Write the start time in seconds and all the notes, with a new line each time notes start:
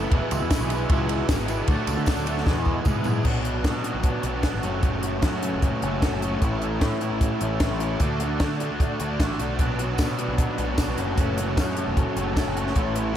Already playing: A2 E3 A3 B3 E4 A4 B4 E5
0.11 E1 E2 B2 E3 G#3 B3 E4 F#4 G#4 G#5, kick, ride
0.31 C#2, ride, tambourine
0.41 E2
0.50 E2 B2 E3 G#3 B3 E4 G#4, kick, snare, ride, tambourine
0.61 B1, tambourine
0.69 E2 B2 E3 G#3 B3 E4, ride, tambourine
0.74 G#4
0.89 C#2 E2 B2 E3 G#3 B3 E4 G#4, kick, ride, tambourine
1.09 ride
1.28 G#1 E2 B2 E3 G#3 B3 E4 G#4, kick, snare, ride, tambourine
1.48 E2 B2 E3 G#3 B3 E4 G#4, ride, tambourine
1.68 D2 D3 F#3 A3 D4 F#4 A4 D5 A5, kick, ride, tambourine
1.87 C#2, ride, tambourine
1.97 D3, tambourine
2.06 D3 F#3 A3 D4 F#4 A4, kick, snare, ride, tambourine
2.16 D2, tambourine
2.26 D3 F#3 A3 D4 F#4 A4, ride, tambourine
2.38 snare
2.45 E2 B2 E3 G#3 B3 E4 G#4 B4 E5 G#5, kick, snare, tambourine
2.56 tambourine
2.65 kick, tambourine
2.85 E2 G#2 B2 E3 G#3 B3 E4 G#4, kick, mid tom, tambourine
3.04 E2 B2 E3 G#3 B3 E4 G#4, floor tom, tambourine
3.25 B1 B2 F#3 B3 D4 F#4, kick, crash
3.44 B3 D4 F#4, closed hi-hat
3.63 B2 F#3 B3 D4, kick, snare, closed hi-hat
3.67 F#4
3.84 B2 F#3 B3 D4 F#4, closed hi-hat
3.94 B1
4.03 F#3 B3 D4 F#4, kick, closed hi-hat
4.23 B1 B2 F#3 B3 D4 F#4, closed hi-hat
4.43 F#3 B3 D4 F#4, kick, snare, closed hi-hat
4.54 G#1
4.63 F#1 F#2 C#3 F#3 A3 C#4 F#4, closed hi-hat
4.81 F#2 C#3 F#3 A3, kick, closed hi-hat
4.85 C#4 F#4
5.03 F#3 A3 C#4 F#4, closed hi-hat
5.22 F#2 C#3 F#3 A3 C#4 F#4, kick, snare, closed hi-hat
5.42 F#3 A3 C#4 F#4, closed hi-hat
5.53 F#1
5.61 F#3 A3 C#4 F#4, kick, closed hi-hat
5.82 F#1 F#3 A3 C#4 F#4, closed hi-hat
6.02 F#3 A3 C#4 F#4, kick, snare, closed hi-hat
6.12 F#1
6.22 F#3 A3 C#4 F#4, closed hi-hat
6.41 A1 A2 E3 A3 C#4 E4, kick, closed hi-hat
6.61 A3 C#4 E4, closed hi-hat
6.80 A2 E3 A3 C#4 E4, kick, snare, closed hi-hat
7.00 A2 E3 A3 C#4 E4, closed hi-hat
7.12 A1
7.20 E3 A3 C#4 E4, kick, closed hi-hat
7.40 A1 A2 E3 A3 C#4 E4, closed hi-hat
7.60 E3 A3 C#4 E4, kick, snare, closed hi-hat
7.71 A1
7.80 A3 C#4 E4, closed hi-hat
8.00 D2 D3 A3 D4 F#4, kick, closed hi-hat
8.20 A3 D4 F#4, closed hi-hat
8.40 D3 A3 D4 F#4, kick, snare, closed hi-hat
8.60 D3 A3 D4 F#4, closed hi-hat
8.71 D2
8.80 D3 A3 D4 F#4, kick, closed hi-hat
8.99 D2 D3 A3 D4 F#4, closed hi-hat
9.20 A1 D3 A3 D4 F#4, kick, snare, closed hi-hat
9.39 B1 A3 D4 F#4, closed hi-hat
9.59 B1 B2 F#3 B3 D4 F#4 B4 D5 B5, kick, closed hi-hat
9.79 B3 D4 F#4, closed hi-hat
9.98 B2 F#3 B3 D4, kick, snare, closed hi-hat, tambourine
10.02 F#4
10.19 B2 F#3 B3 D4 F#4, closed hi-hat
10.28 B1
10.38 F#3 B3 D4 F#4, kick, closed hi-hat
10.58 B1 B2 F#3 B3 D4 F#4, closed hi-hat
10.78 F#3 B3 D4 F#4, kick, snare, closed hi-hat, tambourine
10.88 B1
10.98 F#1 F#2 C#3 F#3 A3 C#4 F#4 A4 C#5 A5, closed hi-hat
11.17 F#2 C#3 F#3 A3 C#4 F#4, kick, closed hi-hat
11.38 F#3 A3 C#4 F#4, closed hi-hat
11.56 F#2 C#3 F#3 A3 C#4, kick, snare, closed hi-hat, tambourine
11.60 F#4
11.77 F#3 A3 C#4 F#4, closed hi-hat
11.87 F#1
11.97 F#3 A3 C#4 F#4, kick, closed hi-hat
12.16 F#1 F#3 A3 C#4 F#4, closed hi-hat
12.36 F#3 A3 C#4 F#4, kick, snare, closed hi-hat, tambourine
12.47 F#1
12.56 F#3 A3 C#4 F#4, closed hi-hat
12.67 snare
12.75 A1 A2 E3 A3 C#4 E4 A4, kick, closed hi-hat
12.96 A3 C#4 E4, closed hi-hat
13.13 A2